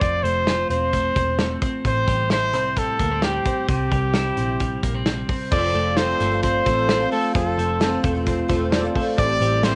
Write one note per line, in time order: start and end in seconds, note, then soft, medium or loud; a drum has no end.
0.00 0.21 F1 medium
0.00 1.85 F3 medium
0.00 0.24 A3 medium
0.00 0.70 C4 medium
0.00 0.46 F4 medium
0.00 0.25 D5 medium
0.00 kick loud
0.00 closed hi-hat medium
0.23 0.63 F1 medium
0.23 0.93 A3 medium
0.23 0.69 C5 medium
0.23 closed hi-hat medium
0.47 1.90 F4 medium
0.47 snare loud
0.47 closed hi-hat medium
0.70 1.09 E1 medium
0.70 1.16 C4 medium
0.70 1.58 C5 medium
0.70 closed hi-hat medium
0.93 1.39 A3 medium
0.93 kick medium
0.93 closed hi-hat medium
1.16 1.55 E1 medium
1.16 1.62 C4 medium
1.16 kick medium
1.16 closed hi-hat medium
1.39 1.90 A3 medium
1.39 snare loud
1.39 closed hi-hat medium
1.62 2.53 C4 medium
1.62 kick loud
1.62 closed hi-hat medium
1.85 2.04 A1 medium
1.85 3.69 A2 medium
1.85 2.29 C5 medium
1.85 kick medium
1.85 closed hi-hat medium
2.08 2.53 A1 medium
2.08 2.76 G3 medium
2.08 kick medium
2.08 closed hi-hat medium
2.30 3.73 E4 medium
2.30 2.79 C5 medium
2.30 snare medium
2.30 closed hi-hat medium
2.53 2.93 C2 medium
2.53 2.99 C4 medium
2.53 snare soft
2.53 closed hi-hat medium
2.76 3.22 G3 medium
2.76 3.25 A4 medium
2.76 kick medium
2.76 closed hi-hat medium
2.99 3.38 D2 medium
2.99 3.11 A#3 medium
2.99 kick medium
2.99 closed hi-hat medium
3.11 3.44 C4 medium
3.22 3.73 G3 medium
3.22 3.69 G4 medium
3.22 snare loud
3.22 closed hi-hat medium
3.45 4.37 C4 medium
3.45 kick medium
3.45 closed hi-hat medium
3.68 3.88 C2 loud
3.68 5.52 C3 medium
3.68 5.03 G4 medium
3.68 kick medium
3.68 closed hi-hat medium
3.91 4.30 C2 medium
3.91 4.59 G3 medium
3.91 kick medium
3.91 closed hi-hat medium
4.14 5.56 E4 medium
4.14 snare medium
4.14 closed hi-hat medium
4.37 4.76 A#1 medium
4.37 4.83 C4 medium
4.37 closed hi-hat medium
4.60 5.05 G3 medium
4.60 kick medium
4.60 closed hi-hat medium
4.83 5.22 A#1 medium
4.83 4.94 A#3 medium
4.83 kick medium
4.83 closed hi-hat medium
4.94 5.28 C4 soft
5.06 5.57 G3 medium
5.06 snare loud
5.06 closed hi-hat medium
5.29 5.98 C4 medium
5.29 kick medium
5.29 open hi-hat medium
5.51 5.71 F1 medium
5.51 5.96 F3 medium
5.51 7.35 F3 medium
5.51 5.97 A3 medium
5.51 5.98 C4 medium
5.51 5.70 F4 medium
5.51 5.98 F4 medium
5.51 5.70 A4 medium
5.51 5.99 A4 medium
5.51 5.71 C5 medium
5.51 5.99 D5 loud
5.51 kick loud
5.51 crash medium
5.74 6.13 F1 medium
5.74 6.21 A3 medium
5.74 5.93 F4 medium
5.74 5.93 A4 medium
5.74 5.93 D5 medium
5.74 closed hi-hat medium
5.97 6.32 F3 medium
5.97 6.32 A3 medium
5.97 6.32 C4 medium
5.97 6.44 C4 medium
5.97 6.16 F4 medium
5.97 6.32 F4 medium
5.97 6.16 A4 medium
5.97 6.30 A4 medium
5.97 6.43 C5 medium
5.97 6.17 C5 medium
5.97 snare loud
5.97 closed hi-hat medium
6.19 6.60 G1 medium
6.19 6.66 A3 medium
6.19 6.39 F4 medium
6.19 6.39 A4 medium
6.19 6.39 C5 medium
6.19 snare soft
6.19 closed hi-hat medium
6.32 6.66 C4 soft
6.32 6.66 F4 soft
6.32 6.66 A4 medium
6.42 6.89 C4 medium
6.42 6.62 F4 medium
6.42 6.62 A4 medium
6.42 6.62 C5 medium
6.42 7.08 C5 medium
6.42 kick medium
6.42 closed hi-hat medium
6.65 7.05 A1 medium
6.65 7.01 A3 medium
6.65 7.12 A3 medium
6.65 7.01 C4 medium
6.65 6.84 F4 loud
6.65 7.01 F4 medium
6.65 6.85 A4 medium
6.65 6.85 C5 loud
6.65 kick medium
6.65 closed hi-hat medium
6.69 6.99 A4 medium
6.88 7.81 C4 medium
6.88 7.07 F4 loud
6.88 7.08 A4 medium
6.88 7.08 C5 loud
6.88 snare loud
6.88 closed hi-hat medium
7.00 7.35 C4 soft
7.00 7.35 F4 medium
7.00 7.35 A4 medium
7.12 7.58 A3 medium
7.12 7.31 F4 medium
7.12 7.33 A4 medium
7.12 7.31 A4 medium
7.12 7.31 C5 medium
7.12 open hi-hat medium
7.35 7.55 F1 loud
7.35 7.79 F3 medium
7.35 9.18 F3 medium
7.35 7.81 A3 medium
7.35 7.81 C4 medium
7.35 7.54 F4 medium
7.35 7.80 F4 medium
7.35 7.54 A4 medium
7.35 8.00 A4 medium
7.35 7.82 A4 medium
7.35 7.54 C5 loud
7.35 kick loud
7.35 closed hi-hat medium
7.57 7.97 F1 medium
7.57 8.04 A3 medium
7.57 7.76 F4 medium
7.57 7.77 A4 medium
7.57 7.77 C5 medium
7.57 closed hi-hat medium
7.80 8.15 F3 medium
7.80 8.15 A3 medium
7.80 8.15 C4 medium
7.80 8.27 C4 medium
7.80 7.99 F4 medium
7.80 8.15 F4 medium
7.80 7.99 A4 medium
7.80 8.14 A4 medium
7.80 8.00 C5 medium
7.80 snare loud
7.80 closed hi-hat medium
8.03 8.43 E1 medium
8.03 8.50 A3 medium
8.03 8.22 F4 medium
8.03 8.22 A4 medium
8.03 8.22 C5 medium
8.03 kick medium
8.03 closed hi-hat medium
8.15 8.48 C4 soft
8.15 8.49 F4 soft
8.15 8.49 A4 medium
8.26 8.72 C4 medium
8.26 8.45 F4 medium
8.26 8.45 A4 medium
8.26 8.46 C5 loud
8.26 kick medium
8.26 closed hi-hat medium
8.48 8.88 E1 medium
8.48 8.83 A3 medium
8.48 8.95 A3 medium
8.48 8.84 C4 medium
8.48 8.68 F4 loud
8.48 8.84 F4 medium
8.48 8.68 A4 medium
8.48 8.82 A4 medium
8.48 8.68 C5 loud
8.48 kick medium
8.48 closed hi-hat medium
8.71 9.64 C4 medium
8.71 8.91 F4 loud
8.71 8.91 A4 loud
8.71 8.91 D5 loud
8.71 snare loud
8.71 closed hi-hat medium
8.83 9.18 C4 medium
8.83 9.19 F4 medium
8.83 9.18 A4 medium
8.95 9.41 A3 medium
8.95 9.14 F4 medium
8.95 9.14 A4 medium
8.95 9.14 C5 loud
8.95 kick medium
8.95 open hi-hat medium
9.17 9.38 A1 medium
9.17 9.62 A2 medium
9.17 9.75 A2 medium
9.17 9.62 E3 medium
9.17 9.63 G3 medium
9.17 9.64 C4 medium
9.17 9.64 E4 medium
9.17 9.36 G4 medium
9.17 9.37 A4 medium
9.17 9.65 A4 medium
9.17 9.37 C5 loud
9.17 9.65 D5 loud
9.17 kick loud
9.17 closed hi-hat medium
9.40 9.75 A1 loud
9.40 9.75 G3 medium
9.40 9.59 G4 medium
9.40 9.59 A4 medium
9.40 9.60 C5 medium
9.40 closed hi-hat medium
9.63 9.75 A2 medium
9.63 9.75 E3 medium
9.63 9.75 G3 medium
9.63 9.75 C4 medium
9.63 9.75 E4 medium
9.63 9.75 G4 medium
9.63 9.75 A4 medium
9.63 9.75 C5 medium
9.63 snare loud
9.63 closed hi-hat medium